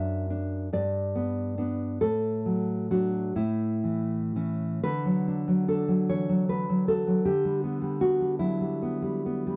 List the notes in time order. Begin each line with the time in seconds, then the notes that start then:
Already playing: F#2 D4 E5
0.30 D4
0.73 G2 D5
1.15 B3
1.58 B3 D4
2.01 A2 A4
2.46 F#3
2.91 F#3 D4 F#4
3.36 A2 E4
3.84 E3
4.36 E3 C#4
4.83 D3 B4
5.05 F#3
5.28 D4
5.48 F#3
5.68 D4 A4
5.88 F#3
6.09 E3 C#5
6.29 F#3
6.49 D4 B4
6.69 F#3
6.88 F#4 A4
7.07 F#3
7.25 D3 G4
7.45 G3
7.64 B3
7.82 G3
8.01 B3 F#4
8.21 G3
8.39 F#3 E4
8.61 G3
8.82 B3
9.02 G3
9.26 B3
9.47 G3